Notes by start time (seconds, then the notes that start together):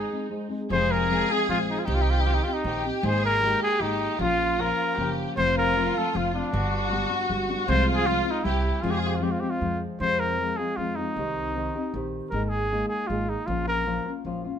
Already playing: G#3 C4 D#4 G#4
0.11 G#3 C4 D#4 G#4
0.30 G#3 C4 D#4 G#4
0.49 G#3 C4 D#4 G#4
0.70 F1 F2 C3 F3 G#3 C4 F4 G#4 C5
0.91 A#4
1.10 F3 G#3 C4 F4
1.30 F3 G#3 C4 F4 G#4
1.48 A#1 F3 G#3 C4 F4
1.70 D#4
1.79 F4
1.85 C2 C3 D#3 C4 D#4 G4
1.95 F4
2.02 D#4
2.10 F4
2.20 D#4
2.25 D#3 C4 D#4 F4 G4
2.34 D#4
2.43 C4 D#4 F4 G4
2.53 D#4
2.64 A#1 D#3 C4 D#4 G4
2.83 C4 D#4 G4
3.03 G#1 G#3 A#3 D#4 G#4 C5
3.26 A#4
3.41 G#3 A#3 D#4 G4
3.63 G#4
3.80 G#1 G#3 A#3 D#4
4.18 A#1 A#2 F3 A#3 C#4 F4
4.58 F3 A#3 C#4 F4 A#4
4.96 F#1 F3 A#3 C#4 F4 G4
5.35 F1 F2 C3 F3 A3 C4 F4 C5
5.58 A#4
5.75 F3 A3 C4 F4
5.95 F3 A3 C4 F4 A4
6.13 F1 F3 A3 C4 F4
6.33 F3 A3 C4 D4 F4
6.52 G1 G2 D3 G3 B3 D4 F#4
6.91 G3 B3 D4 G4
7.10 G3 B3 D4 G4
7.29 G1 G3 B3 D4 G4
7.48 G3 B3 D4 G4
7.67 C2 C3 F3 G#3 C4 F4 C5
7.95 G#4
8.06 F3 G#3 C4 F4
8.25 G#3 C4 F4
8.31 D#4
8.43 C2 G3 C4 E4 G4
8.82 F2 C3 F3 G#3 C4 F4 G#4
8.91 G4
8.99 F4
9.07 G4
9.15 F4
9.21 F3 G#3 C4 F4 G4
9.32 F4
9.40 F3 G#3 C4 F4 G4
9.50 F4
9.61 F2 F3 G#3 C4 F4
10.00 F2 C3 F3 G#3 C4 F4 C5
10.20 A#4
10.40 F3 G#3 C4 F4
10.57 F3 G#3 C4 F4 G#4
10.77 F2 F3 G#3 C4 F4
10.96 F3 G#3 C4 D#4 F4
11.16 C2 C3 D#3 C4 D#4 G4
11.56 D#3 C4 D#4 G4
11.75 C4 D#4 G4
11.94 A#1 D#3 C4 D#4 G4
12.30 G#1 G#3 A#3 D#4 G#4 A#4
12.45 A#4
12.49 G#4
12.71 G#3 A#3 D#4 G#4
12.89 G#4
13.07 G#1 G#3 A#3 D#4 F4 G#4
13.28 A#3 D#4 G#4
13.47 A#1 A#2 F3 A#3 C#4 F4
13.68 A#4
13.85 F3 A#3 C#4 F4
14.06 A#3 C#4 F4
14.24 A#1 F3 A#3 C#4 F4
14.44 A#3 C#4 F4